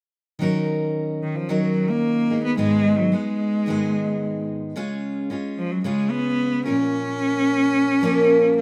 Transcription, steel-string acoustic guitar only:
0.39 1.48 D#3 medium
0.39 1.48 F#3 medium
0.39 1.49 C#4 medium
0.39 1.50 D#4 medium
0.43 1.49 A#4 medium
1.49 2.58 D#3 medium
1.49 2.31 F#3 medium
1.49 2.31 C#4 medium
1.49 2.31 D#4 medium
1.49 2.30 A#4 medium
2.30 2.57 G#3 soft
2.30 2.57 B3 soft
2.30 2.58 D#4 soft
2.30 2.58 G#4 soft
2.57 3.12 G#2 medium
2.57 3.12 D#3 medium
2.57 3.11 G#3 medium
2.57 3.12 B3 medium
2.57 3.12 D#4 medium
2.57 3.14 G#4 medium
3.12 3.68 G#3 soft
3.12 3.67 B3 soft
3.12 3.67 D#4 soft
3.12 3.70 G#4 soft
3.66 4.75 G#2 medium
3.66 4.75 D#3 medium
3.66 4.75 G#3 medium
3.66 4.76 B3 medium
3.66 4.77 D#4 medium
3.70 4.76 G#4 medium
4.76 5.30 C#3 medium
4.76 5.29 G#3 medium
4.76 5.30 C#4 medium
4.76 5.31 F4 medium
4.76 5.31 G#4 medium
5.30 5.84 G#3 medium
5.30 5.85 C#4 medium
5.30 5.86 F4 medium
5.30 5.85 G#4 medium
5.84 6.66 C#3 medium
5.84 6.66 G#3 medium
5.84 6.67 C#4 medium
5.84 6.66 F4 medium
5.84 6.65 G#4 medium
6.66 8.00 A#2 soft
6.66 8.01 F3 soft
6.66 8.02 A#3 soft
6.66 8.03 C#4 soft
6.66 8.02 F4 soft
6.66 8.05 A#4 medium
8.01 8.61 A#2 medium
8.01 8.61 F3 medium
8.01 8.61 A#3 medium
8.01 8.61 C#4 medium
8.01 8.61 F4 medium
8.05 8.61 A#4 medium

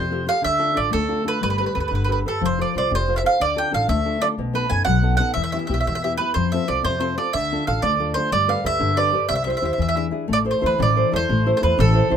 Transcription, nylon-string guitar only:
0.00 0.27 C3 medium
0.11 0.25 F4 soft
0.11 0.25 G4 soft
0.11 0.27 A4 soft
0.27 0.40 F4 soft
0.27 0.40 G4 soft
0.27 0.40 A4 soft
0.42 0.75 D3 medium
0.59 0.73 D4 soft
0.59 0.73 F4 soft
0.59 0.74 A4 medium
0.74 1.02 D4 soft
0.74 1.02 F4 soft
0.74 1.03 A4 soft
0.91 1.24 A3 medium
1.08 1.24 D4 soft
1.08 1.23 F4 soft
1.08 1.24 A4 soft
1.25 1.38 D4 soft
1.25 1.38 F4 soft
1.25 1.38 A4 soft
1.41 1.74 G3 soft
1.59 1.74 G4 soft
1.59 1.74 A4 soft
1.59 1.74 B4 medium
1.75 2.02 G4 soft
1.75 2.02 A4 soft
1.75 2.02 B4 soft
1.92 2.24 D3 medium
2.08 2.24 G4 soft
2.08 2.24 A4 soft
2.08 2.25 B4 soft
2.26 2.38 G4 soft
2.26 2.38 A4 soft
2.26 2.38 B4 soft
2.41 2.73 F3 soft
2.59 2.74 F4 soft
2.59 2.75 A4 soft
2.59 2.75 C5 soft
2.76 3.02 F4 soft
2.76 3.02 A4 soft
2.76 3.02 C5 soft
2.90 3.22 C3 medium
3.08 3.23 F4 soft
3.08 3.23 A4 soft
3.08 3.24 C5 soft
3.24 3.36 F4 soft
3.24 3.37 A4 soft
3.24 3.37 C5 soft
3.40 3.72 D3 soft
3.56 3.70 D4 soft
3.56 3.71 F4 soft
3.56 3.71 A4 soft
3.71 3.98 D4 soft
3.71 3.99 F4 soft
3.71 3.99 A4 soft
3.88 4.20 A3 medium
4.05 4.20 D4 soft
4.05 4.21 F4 soft
4.05 4.21 A4 soft
4.21 4.34 D4 soft
4.21 4.34 F4 soft
4.21 4.35 A4 soft
4.39 4.70 B2 medium
4.53 4.68 B3 soft
4.53 4.69 D#4 soft
4.53 4.69 A4 soft
4.69 4.96 B3 soft
4.69 4.97 D#4 soft
4.69 4.97 A4 soft
4.86 5.18 F#3 medium
5.02 5.18 B3 soft
5.02 5.19 D#4 soft
5.02 5.19 A4 medium
5.20 5.32 B3 soft
5.20 5.33 D#4 soft
5.20 5.32 A4 soft
5.35 5.68 E3 soft
5.53 5.68 B3 soft
5.53 5.69 E4 soft
5.53 5.69 G4 soft
5.69 5.96 B3 soft
5.69 5.97 E4 soft
5.69 5.97 G4 medium
5.86 6.18 B2 soft
6.03 6.19 B3 soft
6.03 6.19 E4 soft
6.03 6.19 G4 soft
6.20 6.32 B3 soft
6.20 6.32 E4 soft
6.20 6.32 G4 soft
6.35 6.68 F3 medium
6.53 6.67 C4 soft
6.53 6.67 F4 soft
6.53 6.67 A4 soft
6.68 6.95 C4 soft
6.68 6.95 F4 soft
6.68 6.95 A4 medium
6.83 7.16 C3 medium
7.00 7.16 C4 soft
7.00 7.16 F4 soft
7.00 7.17 A4 soft
7.17 7.30 C4 soft
7.17 7.30 F4 soft
7.17 7.30 A4 soft
7.34 7.66 D3 soft
7.52 7.66 D4 soft
7.52 7.66 F4 soft
7.52 7.66 A4 medium
7.67 7.94 D4 soft
7.67 7.94 F4 soft
7.67 7.94 A4 soft
7.83 8.15 A3 medium
8.00 8.16 D4 soft
8.00 8.16 F4 soft
8.00 8.16 A4 soft
8.17 8.29 D4 soft
8.17 8.29 F4 soft
8.17 8.30 A4 soft
8.32 8.64 G3 soft
8.48 8.62 G4 soft
8.48 8.64 A4 soft
8.48 8.63 B4 medium
8.64 8.91 G4 soft
8.64 8.92 A4 soft
8.64 8.91 B4 soft
8.79 9.12 D3 medium
8.96 9.12 G4 soft
8.96 9.13 A4 soft
8.96 9.13 B4 medium
9.13 9.26 G4 soft
9.13 9.27 A4 soft
9.13 9.27 B4 soft
9.29 9.62 C3 medium
9.46 9.61 E4 soft
9.46 9.62 G4 soft
9.46 9.62 C5 soft
9.62 9.75 E4 soft
9.62 9.76 G4 soft
9.62 9.76 C5 medium
9.78 10.11 E3 medium
9.95 10.10 D4 soft
9.95 10.10 E4 soft
9.95 10.11 G#4 soft
10.11 10.25 D4 soft
10.11 10.25 E4 soft
10.11 10.25 G#4 soft
10.28 10.61 A3 medium
10.45 10.60 E4 soft
10.45 10.60 A4 soft
10.45 10.61 C5 medium
10.61 10.89 E4 soft
10.61 10.89 A4 soft
10.61 10.89 C5 soft
10.78 11.11 E3 medium
10.96 11.11 E4 soft
10.96 11.11 A4 soft
10.96 11.12 C5 medium
11.12 11.39 E4 soft
11.12 11.39 A4 soft
11.12 11.39 C5 medium
11.30 11.61 A3 medium
11.46 11.60 E4 medium
11.46 11.61 A4 soft
11.46 11.61 C5 medium
11.61 11.88 E4 soft
11.61 11.88 A4 soft
11.61 11.88 C5 medium
11.77 12.09 E3 medium
11.94 12.09 E4 soft
11.94 12.10 A4 soft
11.94 12.10 C5 medium
12.10 12.17 E4 soft
12.10 12.17 A4 soft
12.10 12.17 C5 soft

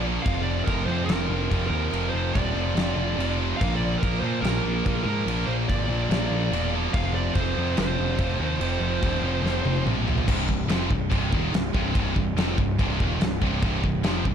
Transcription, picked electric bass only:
0.00 0.17 A#1 medium
0.26 0.61 F1 medium
0.68 0.85 F1 loud
0.88 1.06 F2 medium
1.07 1.26 F1 loud
1.29 1.47 F1 medium
1.51 1.69 F1 medium
1.70 1.88 D#2 medium
1.92 2.10 F1 medium
2.13 2.31 F1 medium
2.35 2.53 D#1 medium
2.55 2.73 F1 medium
2.76 2.93 F1 loud
2.96 3.14 F1 medium
3.17 3.52 F1 medium
3.61 3.96 A#1 medium
4.03 4.20 A#1 loud
4.22 4.40 A#2 medium
4.42 4.60 A#1 loud
4.64 4.81 A#1 loud
4.86 5.03 A#1 medium
5.05 5.23 G#2 medium
5.26 5.44 A#1 medium
5.47 5.65 A#1 medium
5.69 5.86 G#1 loud
5.88 6.06 A#1 medium
6.09 6.27 A#1 loud
6.30 6.48 A#1 medium
6.51 6.86 E1 medium
6.94 7.29 F1 medium
7.35 7.53 F1 loud
7.58 7.75 F2 medium
7.78 7.95 F1 loud
7.98 8.16 F1 medium
8.19 8.36 F1 medium
8.40 8.57 D#2 medium
8.60 8.78 F1 medium
8.80 8.98 F1 medium
9.03 9.20 D#1 loud
9.22 9.40 F1 medium
9.43 9.61 F1 loud
9.64 9.82 F1 medium
9.86 10.21 A#1 medium
10.28 10.47 C1 medium
10.49 10.67 C1 medium
10.68 10.88 F1 loud
10.90 11.10 C1 medium
11.12 11.31 C1 loud
11.33 11.51 D#1 medium
11.52 11.72 C1 medium
11.74 11.93 C1 loud
11.95 12.14 C1 medium
12.16 12.35 C1 medium
12.36 12.56 F1 loud
12.58 12.77 C1 medium
12.79 12.98 C1 loud
13.00 13.19 D#1 loud
13.20 13.40 C1 medium
13.42 13.61 C1 loud
13.63 13.82 C1 medium
13.84 14.03 C1 medium
14.04 14.23 F1 loud
14.26 14.35 C1 medium

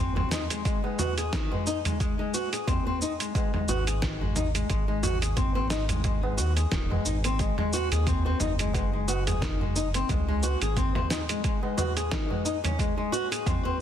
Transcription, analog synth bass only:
0.00 0.27 G#1 loud
3.68 4.65 G#1 medium
4.70 6.40 G#1 loud
6.39 6.66 D#2 medium
6.72 7.00 D#1 medium
7.06 7.52 G#1 medium
7.92 8.36 D#2 medium
8.40 10.04 F#1 loud
10.09 10.56 C#2 loud
10.61 11.05 G#1 loud

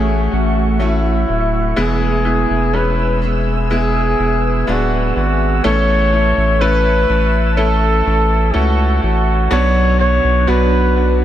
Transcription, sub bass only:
0.00 0.28 A1 medium
0.33 1.25 A1 medium
1.29 1.74 D1 medium
1.77 2.46 E1 loud
2.50 4.15 E1 loud
4.19 4.64 E1 medium
4.68 5.13 D1 medium
5.16 5.61 G#1 medium
5.65 6.33 A1 loud
6.37 7.06 A1 loud
7.09 8.02 A1 loud
8.07 8.51 A1 loud
8.55 9.00 C#2 medium
9.03 9.48 A1 medium
9.51 10.20 B1 loud
10.24 10.46 B1 loud
10.48 11.25 B1 medium

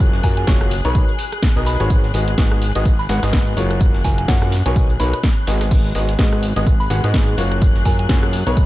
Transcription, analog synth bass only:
0.00 0.22 F#1 loud
0.24 0.45 F#2 loud
0.47 0.82 F#1 loud
0.85 1.05 B1 medium
1.56 1.77 B1 loud
1.80 2.12 G#1 loud
2.14 2.36 G#1 loud
2.38 2.73 G#1 loud
2.75 3.07 G#1 medium
3.09 3.20 G#1 loud
3.23 3.55 G#1 loud
3.57 4.03 F#1 loud
4.05 4.26 F#1 loud
4.28 4.63 F#2 loud
4.66 4.98 B1 medium
5.00 5.14 B1 loud
5.47 5.93 G#1 loud
5.95 6.17 G#1 loud
6.19 6.54 G#1 loud
6.56 6.88 G#1 loud
6.90 7.01 G#1 loud
7.04 7.36 G#2 loud
7.38 7.83 F#1 loud
7.85 8.07 F#2 loud
8.09 8.44 F#2 medium
8.47 8.66 B1 loud

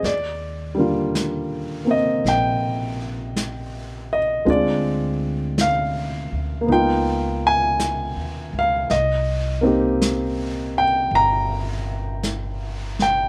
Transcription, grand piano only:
0.00 0.13 G#4 soft
0.05 1.96 D5 medium
0.75 4.48 D3 soft
0.75 4.46 G3 soft
0.75 1.83 A#3 soft
0.80 4.45 F4 soft
1.85 4.46 A#3 soft
1.85 4.44 C4 soft
1.91 2.27 D#5 medium
2.28 4.18 G5 medium
4.13 4.49 D#5 medium
4.45 6.68 G#3 soft
4.45 6.68 C4 soft
4.45 6.68 D4 soft
4.45 6.68 F4 soft
4.50 5.63 D5 medium
5.61 6.66 F5 medium
6.61 8.86 A#3 soft
6.66 8.89 B3 soft
6.66 8.90 D#4 soft
6.72 8.92 F4 medium
6.72 7.48 G5 medium
7.47 8.59 G#5 medium
8.59 8.90 F5 medium
8.91 10.82 D#5 medium
9.61 13.29 A#3 soft
9.61 13.29 C4 soft
9.61 13.29 D#4 soft
9.67 13.29 G4 soft
10.78 11.11 G5 medium
11.15 12.97 A#5 medium
13.02 13.29 G5 medium

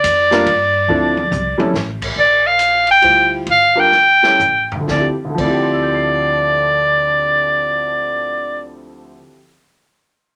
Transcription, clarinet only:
0.00 1.75 D5 medium
2.19 2.48 D5 medium
2.46 2.88 F5 medium
2.91 3.30 G5 loud
3.51 3.81 F5 medium
3.80 4.72 G5 medium
4.90 5.07 D5 medium
5.40 8.66 D5 medium

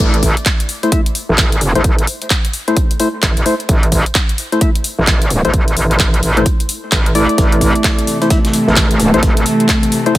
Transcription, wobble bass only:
0.00 0.35 A1 loud
1.29 1.73 A1 loud
1.75 2.06 A1 medium
3.23 3.35 A1 medium
3.37 3.44 A1 medium
3.69 4.04 A1 loud
4.99 5.42 A1 medium
5.45 5.75 A1 medium
5.77 5.98 A1 medium
6.00 6.21 A1 loud
6.23 6.44 A1 loud
6.92 7.27 A1 medium
7.38 7.73 A1 loud
8.68 9.12 A1 medium
9.14 9.44 A1 medium

